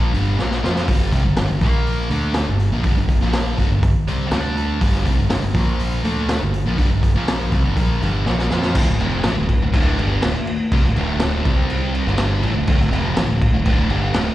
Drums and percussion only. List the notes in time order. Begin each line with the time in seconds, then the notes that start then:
0.14 open hi-hat
0.39 snare
0.51 snare
0.64 snare
0.76 snare
0.88 kick, open hi-hat
1.12 kick, open hi-hat
1.37 snare, open hi-hat
1.61 kick, open hi-hat
1.86 open hi-hat
2.10 open hi-hat
2.34 snare, open hi-hat
2.59 open hi-hat
2.84 kick, open hi-hat
3.09 kick, open hi-hat
3.21 snare
3.33 snare, open hi-hat
3.58 kick, open hi-hat
3.83 kick, open hi-hat
4.08 open hi-hat
4.31 snare, open hi-hat
4.57 open hi-hat
4.81 kick, open hi-hat
4.94 snare
5.06 kick, open hi-hat
5.30 snare, open hi-hat
5.55 kick, open hi-hat
5.79 open hi-hat
6.04 open hi-hat
6.29 snare, open hi-hat
6.54 open hi-hat
6.78 kick, open hi-hat
7.03 kick, open hi-hat
7.28 snare, open hi-hat
7.52 kick, open hi-hat
7.77 kick, open hi-hat
8.02 open hi-hat
8.26 snare
8.39 snare
8.50 snare
8.62 snare
8.75 kick, crash
9.00 crash
9.23 snare, crash
9.49 kick, crash
9.74 kick, crash
9.99 crash
10.22 snare, crash
10.47 crash
10.72 kick, crash
10.84 snare
10.96 crash
11.20 snare, crash
11.45 kick, crash
11.70 crash
11.95 crash
12.07 snare
12.18 snare, crash
12.43 crash
12.67 kick, crash
12.80 snare
12.93 crash
13.17 snare, crash
13.42 kick, crash
13.66 kick, crash
13.90 crash
14.14 snare, crash